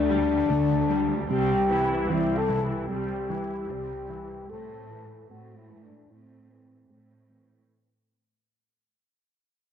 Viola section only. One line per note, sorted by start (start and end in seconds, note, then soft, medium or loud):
0.10 0.49 G3 soft
0.49 0.89 A3 medium
0.89 1.29 G3 soft
1.30 1.67 G3 soft
1.30 1.67 C4 soft
1.71 2.10 E3 soft
1.71 2.10 E4 soft
2.10 2.50 G3 soft
2.10 2.50 C4 soft
2.50 2.89 E3 soft
2.50 2.89 E4 soft
2.90 3.27 G3 soft
2.90 3.27 C4 soft
3.30 3.69 E3 soft
3.30 3.69 E4 soft
3.69 4.09 G3 soft
3.69 4.09 C4 soft
4.09 4.49 E3 soft
4.09 4.49 E4 soft
4.49 4.87 A3 soft
4.49 4.87 C4 soft
4.90 5.29 E3 soft
4.90 5.28 A3 soft
5.29 5.68 A3 soft
5.29 5.69 C4 soft
5.69 6.09 E3 soft
5.69 6.09 A3 soft
6.10 6.47 A3 soft
6.10 6.47 C4 soft
6.49 6.89 E3 soft
6.49 6.88 A3 soft
6.89 7.29 A3 soft
6.89 7.29 C4 soft
7.30 7.69 E3 soft
7.30 7.69 A3 soft